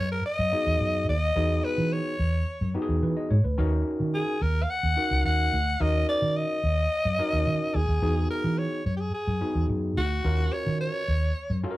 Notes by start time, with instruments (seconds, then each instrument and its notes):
Already playing: fingered electric bass F#2, alto saxophone C#5
0.12 alto saxophone A#4
0.26 alto saxophone D#5
0.39 fingered electric bass F#2
0.52 tine electric piano B3 D#4 F#4 G#4
0.67 fingered electric bass E2
0.80 fingered electric bass F#2
1.08 fingered electric bass D#2, alto saxophone D#5
1.36 fingered electric bass E2, tine electric piano B3 D#4 F#4 G#4
1.64 alto saxophone B4
1.78 fingered electric bass E3
1.93 alto saxophone C#5
2.19 fingered electric bass E2
2.61 fingered electric bass F#2
2.75 tine electric piano B3 D#4 F#4 G4
2.82 tine electric piano G#4
2.89 fingered electric bass E2
3.03 fingered electric bass E3, tine electric piano B4
3.17 tine electric piano D#5
3.31 fingered electric bass G#2, tine electric piano C#5
3.44 fingered electric bass D2, tine electric piano B4
3.58 fingered electric bass D#2, tine electric piano C#4 D#4 F#4 A#4
4.00 fingered electric bass D#3
4.14 alto saxophone G#4
4.42 fingered electric bass D#2, alto saxophone A#4
4.63 alto saxophone F5
4.70 alto saxophone F#5
4.83 fingered electric bass D#2
4.97 tine electric piano C#4 D#4 F#4 A#4
5.11 fingered electric bass C#2
5.25 fingered electric bass D#2, alto saxophone F#5
5.53 fingered electric bass D2
5.80 fingered electric bass D#2, tine electric piano C#4 D#4 F#4 A#4, alto saxophone D#5
6.09 alto saxophone D5
6.22 fingered electric bass D#3
6.37 alto saxophone D#5
6.64 fingered electric bass D#2
7.05 fingered electric bass F#2
7.19 tine electric piano C#4 D#4 F#4 A#4
7.33 fingered electric bass D#2
7.47 fingered electric bass D#3
7.75 fingered electric bass D#2, alto saxophone G#4
7.89 fingered electric bass D#2
8.02 fingered electric bass E2, tine electric piano B3 D#4 F#4 G#4
8.30 alto saxophone A#4
8.44 fingered electric bass E3
8.59 alto saxophone C#5
8.86 fingered electric bass F#2, alto saxophone C#5
8.97 alto saxophone G4 G#4
9.14 alto saxophone G#4
9.27 fingered electric bass F#2
9.41 tine electric piano B3 D#4 F#4 G#4
9.55 fingered electric bass E2
9.69 fingered electric bass F#2
9.97 fingered electric bass D2, alto saxophone F#4
10.24 fingered electric bass D#2, tine electric piano C#4 F4 F#4 A#4
10.53 alto saxophone C#5
10.67 fingered electric bass D#3
10.81 alto saxophone C#5
11.08 fingered electric bass D#2
11.50 fingered electric bass F#2
11.63 tine electric piano C#4 F4 F#4 A4
11.71 tine electric piano A#4